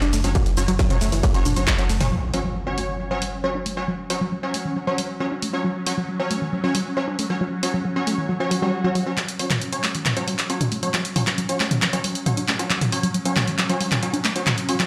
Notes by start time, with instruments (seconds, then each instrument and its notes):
0.02 synth arpeggio sound D4, snare, closed hi-hat, ride, shaker
0.13 sub bass F#1, synth arpeggio sound A3, snare, open hi-hat, ride, shaker
0.24 sub bass F#1, synth stab F#3 C#4 C#5, snare, closed hi-hat, ride, shaker
0.35 synth arpeggio sound F#3, kick, closed hi-hat, mid tom, ride, shaker
0.46 snare, closed hi-hat, ride, shaker
0.57 sub bass F#1, synth stab F#3 C#4 C#5, open hi-hat, ride, shaker
0.68 sub bass F#1, synth arpeggio sound F#3, closed hi-hat, ride, shaker
0.79 synth arpeggio sound F#3, kick, snare, closed hi-hat, ride, shaker
0.90 synth stab F#3 C#4 C#5, closed hi-hat, mid tom, ride, shaker
1.01 sub bass F#1, synth arpeggio sound A3, snare, open hi-hat, ride, shaker
1.12 sub bass F#1, synth arpeggio sound E3, snare, closed hi-hat, open hi-hat, ride, shaker
1.23 synth arpeggio sound F#3, kick, snare, closed hi-hat, open hi-hat, ride, shaker
1.34 synth arpeggio sound F#3, synth stab F#3 C#4 C#5, closed hi-hat, ride, shaker
1.45 sub bass F#1, synth arpeggio sound D4, mid tom, open hi-hat, ride, shaker
1.56 sub bass F#1, synth stab F#3 C#4 C#5, closed hi-hat, ride, shaker
1.67 synth arpeggio sound F#3, kick, snare, clap, closed hi-hat, ride, shaker
1.78 synth arpeggio sound F#3, synth stab F#3 C#4 C#5, snare, closed hi-hat, ride, shaker
1.89 sub bass F#1, synth arpeggio sound A3, snare, open hi-hat, ride, shaker
2.00 sub bass F#1, synth stab F#3 C#4 C#5, snare, closed hi-hat, mid tom, open hi-hat, ride, shaker
2.12 synth arpeggio sound F#3, synth drone F#3 C#4, impact
2.34 synth stab F#3 C#4 C#5, open hi-hat
2.45 synth arpeggio sound F#3
2.56 synth arpeggio sound F#3
2.67 synth stab F#3 C#4 C#5
2.78 synth arpeggio sound A3, open hi-hat
2.89 synth arpeggio sound E3
3.00 synth arpeggio sound F#3
3.11 synth arpeggio sound F#3, synth stab F#3 C#4 C#5
3.22 synth arpeggio sound G3, open hi-hat
3.44 synth stab F#3 C#4 C#5
3.55 synth arpeggio sound D4
3.66 synth arpeggio sound A3, open hi-hat
3.77 synth stab F#3 C#4 C#5
3.88 synth arpeggio sound F#3
4.10 synth stab F#3 C#4 C#5, open hi-hat
4.21 synth arpeggio sound F#3
4.32 synth arpeggio sound F#3
4.43 synth stab F#3 C#4 C#5
4.54 synth arpeggio sound A3, open hi-hat
4.65 synth arpeggio sound E3
4.76 synth arpeggio sound F#3
4.87 synth arpeggio sound F#3, synth stab F#3 C#4 C#5
4.98 synth arpeggio sound G3, open hi-hat
5.20 synth stab F#3 C#4 C#5
5.31 synth arpeggio sound D4
5.42 synth arpeggio sound A3, open hi-hat
5.53 synth stab F#3 C#4 C#5
5.64 synth arpeggio sound F#3
5.87 synth stab F#3 C#4 C#5, open hi-hat
5.98 synth arpeggio sound F#3
6.09 synth arpeggio sound F#3
6.20 synth stab F#3 C#4 C#5
6.30 synth arpeggio sound A3, open hi-hat
6.42 synth arpeggio sound E3
6.53 synth arpeggio sound F#3
6.64 synth arpeggio sound F#3, synth stab F#3 C#4 C#5
6.75 synth arpeggio sound G3, open hi-hat
6.97 synth stab F#3 C#4 C#5
7.08 synth arpeggio sound D4
7.19 synth arpeggio sound A3, open hi-hat
7.30 synth stab F#3 C#4 C#5
7.41 synth arpeggio sound F#3
7.63 synth stab F#3 C#4 C#5, open hi-hat
7.74 synth arpeggio sound F#3
7.85 synth arpeggio sound F#3
7.96 synth stab F#3 C#4 C#5
8.07 synth arpeggio sound A3, open hi-hat
8.18 synth arpeggio sound E3
8.29 synth arpeggio sound F#3, swell
8.40 synth arpeggio sound F#3, synth stab F#3 C#4 C#5
8.51 synth arpeggio sound F#3, open hi-hat
8.62 synth stab F#3 C#4 C#5, synth arpeggio sound G3
8.84 synth arpeggio sound F#3, synth stab F#3 C#4 C#5
8.95 synth arpeggio sound F#3, open hi-hat
9.06 synth stab F#3 C#4 C#5
9.17 synth arpeggio sound F#3, synth drone F#3 C#4, clap, closed hi-hat
9.28 closed hi-hat
9.39 synth stab F#3 C#4 C#5, open hi-hat
9.50 synth arpeggio sound F#3, clap, closed hi-hat, mid tom
9.61 synth arpeggio sound F#3, closed hi-hat
9.72 synth stab F#3 C#4 C#5, closed hi-hat
9.84 synth arpeggio sound A3, clap, open hi-hat
9.95 synth arpeggio sound E3, closed hi-hat
10.06 synth arpeggio sound F#3, clap, closed hi-hat, mid tom
10.17 synth arpeggio sound F#3, synth stab F#3 C#4 C#5, closed hi-hat
10.28 synth arpeggio sound G3, open hi-hat
10.39 clap, closed hi-hat
10.50 synth stab F#3 C#4 C#5, closed hi-hat
10.61 synth arpeggio sound D4, closed hi-hat, mid tom
10.72 synth arpeggio sound A3, open hi-hat
10.83 synth stab F#3 C#4 C#5, closed hi-hat
10.94 synth arpeggio sound F#3, clap, closed hi-hat
11.05 closed hi-hat
11.16 synth stab F#3 C#4 C#5, mid tom, open hi-hat
11.27 synth arpeggio sound F#3, clap, closed hi-hat
11.38 synth arpeggio sound F#3, closed hi-hat
11.49 synth stab F#3 C#4 C#5, closed hi-hat
11.60 synth arpeggio sound A3, clap, open hi-hat
11.71 synth arpeggio sound E3, closed hi-hat, mid tom
11.82 synth arpeggio sound F#3, clap, closed hi-hat
11.93 synth stab F#3 C#4 C#5, synth arpeggio sound F#3, closed hi-hat
12.04 synth arpeggio sound G3, open hi-hat
12.15 closed hi-hat
12.26 synth stab F#3 C#4 C#5, closed hi-hat, mid tom
12.37 synth arpeggio sound D4, closed hi-hat
12.48 synth arpeggio sound A3, clap, open hi-hat
12.59 synth stab F#3 C#4 C#5, closed hi-hat
12.70 synth arpeggio sound F#3, clap, closed hi-hat
12.81 closed hi-hat, mid tom
12.92 synth stab F#3 C#4 C#5, open hi-hat
13.03 synth arpeggio sound F#3, closed hi-hat
13.14 synth arpeggio sound F#3, closed hi-hat
13.25 synth stab F#3 C#4 C#5, closed hi-hat
13.36 synth arpeggio sound A3, clap, mid tom, open hi-hat
13.47 synth arpeggio sound E3, closed hi-hat
13.58 synth arpeggio sound F#3, clap, closed hi-hat
13.69 synth arpeggio sound F#3, synth stab F#3 C#4 C#5, closed hi-hat
13.80 synth arpeggio sound G3, open hi-hat
13.92 clap, closed hi-hat, mid tom
14.03 synth stab F#3 C#4 C#5, closed hi-hat
14.13 synth arpeggio sound D4, closed hi-hat
14.24 synth arpeggio sound A3, clap, open hi-hat
14.36 synth stab F#3 C#4 C#5, closed hi-hat
14.47 synth arpeggio sound F#3, clap, closed hi-hat, mid tom
14.58 closed hi-hat
14.69 synth stab F#3 C#4 C#5, open hi-hat
14.80 synth arpeggio sound F#3, clap, closed hi-hat